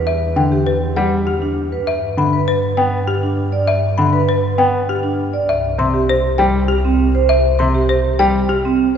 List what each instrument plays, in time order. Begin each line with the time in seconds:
Already playing: double bass E2, vibraphone B4
0.07 marimba E5
0.36 grand piano D3, marimba G5
0.52 vibraphone G4
0.67 marimba B4
0.96 grand piano G3, marimba F#5
1.27 marimba G4
1.42 vibraphone D4
1.72 vibraphone B4
1.87 double bass G2, marimba E5
2.17 grand piano D3, marimba B5
2.33 vibraphone B4
2.48 marimba B4
2.77 grand piano B3, marimba G5
3.08 marimba G4
3.23 vibraphone D4
3.52 vibraphone D5
3.68 marimba E5
3.98 grand piano D3, marimba B5
4.13 vibraphone B4
4.29 marimba B4
4.58 grand piano B3, marimba G5
4.89 marimba G4
5.03 vibraphone D4
5.33 vibraphone D5
5.48 double bass C2, marimba E5
5.78 grand piano C3, marimba C6
5.94 vibraphone G4
6.09 marimba C5
6.38 grand piano G3, marimba G5
6.68 marimba G4
6.85 vibraphone C4
7.15 vibraphone C5
7.29 marimba E5
7.59 grand piano C3, marimba C6
7.74 vibraphone G4
7.89 marimba C5
8.19 grand piano G3, marimba G5
8.49 marimba G4
8.65 vibraphone C4